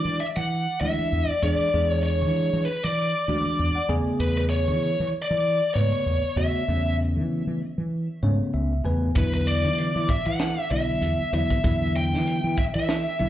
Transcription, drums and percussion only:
9.15 kick, closed hi-hat
9.47 closed hi-hat
9.78 closed hi-hat
10.09 kick, closed hi-hat
10.39 snare, closed hi-hat
10.71 closed hi-hat
11.02 closed hi-hat
11.33 closed hi-hat
11.51 kick
11.64 kick, closed hi-hat
11.96 closed hi-hat
12.14 snare
12.27 closed hi-hat
12.58 kick, closed hi-hat
12.88 snare, closed hi-hat
13.19 closed hi-hat

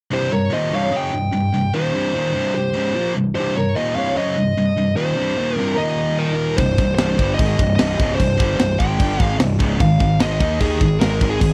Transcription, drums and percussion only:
6.58 kick, crash
6.78 kick, crash
6.98 snare, crash
7.19 kick, crash
7.39 kick, crash
7.59 kick, crash
7.79 snare, crash
8.00 kick, crash
8.20 kick, crash
8.40 kick, crash
8.59 snare, crash
8.80 kick, crash
9.00 kick, crash
9.20 kick, crash
9.40 snare, crash
9.60 kick, crash
9.80 kick, crash
10.00 kick, crash
10.20 snare, crash
10.40 kick, crash
10.60 kick, crash
10.81 kick, crash
11.01 snare, crash
11.21 kick, crash
11.41 kick, crash

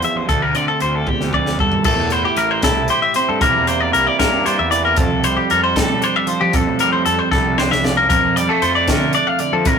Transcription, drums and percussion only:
0.02 closed hi-hat
0.29 kick, closed hi-hat
0.55 closed hi-hat
0.80 closed hi-hat
1.07 kick, high tom
1.21 snare
1.33 kick
1.46 snare
1.59 kick
1.72 floor tom
1.84 kick, crash
2.10 closed hi-hat
2.37 closed hi-hat
2.62 kick, snare, closed hi-hat
2.88 closed hi-hat
3.14 closed hi-hat
3.41 kick, closed hi-hat
3.67 closed hi-hat
3.94 closed hi-hat
4.20 kick, snare, closed hi-hat
4.46 closed hi-hat
4.72 closed hi-hat
4.96 kick, closed hi-hat
5.24 closed hi-hat
5.50 closed hi-hat
5.76 kick, snare, closed hi-hat
6.02 closed hi-hat
6.27 closed hi-hat
6.53 kick, closed hi-hat
6.79 closed hi-hat
7.06 closed hi-hat
7.32 kick, snare
7.58 snare
7.72 snare
7.85 snare
8.10 kick, closed hi-hat
8.37 closed hi-hat
8.62 closed hi-hat
8.88 kick, snare, closed hi-hat
9.13 closed hi-hat
9.39 closed hi-hat
9.65 kick, closed hi-hat

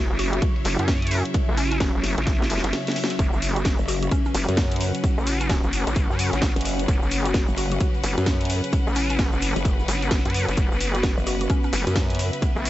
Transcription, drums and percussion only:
0.19 open hi-hat, ride
0.33 closed hi-hat
0.42 kick, closed hi-hat, ride
0.56 ride
0.65 open hi-hat, ride
0.79 snare, closed hi-hat
0.88 kick, snare, closed hi-hat, ride
1.02 closed hi-hat
1.07 closed hi-hat, ride
1.11 open hi-hat
1.25 closed hi-hat
1.34 kick, closed hi-hat, ride
1.57 open hi-hat, ride
1.72 closed hi-hat
1.80 kick, snare, closed hi-hat, ride
2.03 snare, open hi-hat
2.18 closed hi-hat
2.27 kick, snare, closed hi-hat, ride
2.41 snare
2.50 open hi-hat, ride
2.58 snare
2.64 snare, closed hi-hat
2.73 snare, closed hi-hat, ride
2.87 snare, closed hi-hat
2.92 snare, closed hi-hat
2.96 open hi-hat, ride
3.04 snare
3.10 snare, closed hi-hat, ride
3.19 kick, closed hi-hat, ride, shaker
3.33 shaker
3.42 open hi-hat, ride, shaker
3.56 closed hi-hat, shaker
3.65 kick, snare, closed hi-hat, ride, shaker
3.78 shaker
3.88 open hi-hat, ride, shaker
4.03 closed hi-hat, shaker
4.11 kick, closed hi-hat, ride, shaker
4.25 ride, shaker
4.34 open hi-hat, ride, shaker
4.48 snare, closed hi-hat, shaker
4.57 kick, snare, closed hi-hat, ride, shaker
4.71 closed hi-hat, shaker
4.76 closed hi-hat
4.80 open hi-hat, ride, shaker
4.94 closed hi-hat, shaker
5.04 kick, closed hi-hat, ride, shaker
5.18 shaker
5.27 open hi-hat, ride, shaker
5.40 closed hi-hat, shaker
5.49 kick, snare, closed hi-hat, ride, shaker
5.63 shaker
5.73 open hi-hat, ride, shaker
5.87 snare, closed hi-hat, shaker
5.95 kick, closed hi-hat, ride, shaker
6.11 snare, shaker
6.19 open hi-hat, ride, shaker
6.33 snare, closed hi-hat, shaker
6.42 kick, snare, closed hi-hat, ride, shaker
6.56 snare, closed hi-hat, shaker
6.61 closed hi-hat
6.65 open hi-hat, shaker
6.79 closed hi-hat, shaker
6.88 kick, closed hi-hat, ride, shaker
7.02 shaker
7.11 open hi-hat, ride, shaker
7.25 closed hi-hat, shaker
7.34 kick, snare, closed hi-hat, ride, shaker
7.48 shaker
7.56 open hi-hat, ride, shaker
7.71 closed hi-hat, shaker
7.80 kick, closed hi-hat, ride, shaker
7.94 ride, shaker
8.04 open hi-hat, ride, shaker
8.17 snare, closed hi-hat, shaker
8.26 kick, snare, closed hi-hat, ride, shaker
8.41 closed hi-hat, shaker
8.45 closed hi-hat
8.50 open hi-hat, ride, shaker
8.64 closed hi-hat, shaker
8.72 kick, closed hi-hat, ride, shaker
8.87 shaker
8.95 open hi-hat, ride, shaker
9.09 closed hi-hat, shaker
9.18 kick, snare, closed hi-hat, ride, shaker
9.32 shaker
9.42 open hi-hat, ride, shaker
9.56 snare, closed hi-hat, shaker
9.65 kick, closed hi-hat, ride, shaker
9.79 snare, shaker
9.88 open hi-hat, ride, shaker
10.02 snare, closed hi-hat, shaker
10.11 kick, snare, closed hi-hat, ride, shaker
10.25 snare, closed hi-hat, shaker
10.30 closed hi-hat
10.34 open hi-hat, ride, shaker
10.48 closed hi-hat, shaker
10.57 kick, closed hi-hat, ride, shaker
10.72 shaker
10.81 open hi-hat, ride, shaker
10.94 closed hi-hat, shaker
11.03 kick, snare, closed hi-hat, ride, shaker
11.18 shaker
11.27 open hi-hat, ride, shaker
11.41 closed hi-hat, shaker
11.50 kick, closed hi-hat, ride, shaker
11.63 ride, shaker
11.73 open hi-hat, ride, shaker
11.87 snare, closed hi-hat, shaker
11.95 kick, snare, closed hi-hat, ride, shaker
12.10 closed hi-hat, shaker
12.15 closed hi-hat
12.19 open hi-hat, ride, shaker
12.33 closed hi-hat, shaker
12.42 kick, closed hi-hat, ride, shaker
12.57 shaker
12.65 open hi-hat, ride, shaker

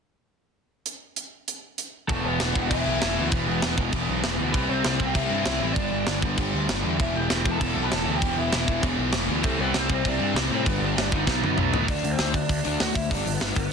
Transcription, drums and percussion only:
0.86 closed hi-hat
1.16 closed hi-hat
1.48 closed hi-hat
1.78 closed hi-hat
2.09 kick, crash
2.40 snare, crash
2.55 kick
2.71 kick, crash
3.02 snare, crash
3.31 kick, crash
3.62 snare, crash
3.78 kick
3.92 kick, crash
4.24 snare, crash
4.54 kick, crash
4.84 snare, crash
5.00 kick
5.15 kick, crash
5.45 snare, crash
5.76 kick, crash
6.07 snare, crash
6.22 kick
6.37 kick, crash
6.69 snare, crash
7.00 kick, crash
7.30 snare, crash
7.45 kick
7.61 kick, crash
7.92 snare, crash
8.22 kick, crash
8.52 snare, crash
8.68 kick
8.83 kick, crash
9.13 snare, crash
9.43 kick, crash
9.74 snare, crash
9.90 kick
10.05 kick, crash
10.36 snare, crash
10.66 kick, crash
10.98 snare, crash
11.12 kick
11.27 kick, snare
11.44 high tom
11.58 mid tom
11.74 floor tom
11.88 kick, open hi-hat
12.04 open hi-hat
12.19 snare, open hi-hat
12.34 kick, open hi-hat
12.49 kick, open hi-hat
12.65 open hi-hat
12.80 snare, open hi-hat
12.95 kick, open hi-hat
13.11 kick, open hi-hat
13.27 open hi-hat
13.41 snare, open hi-hat
13.55 kick, open hi-hat

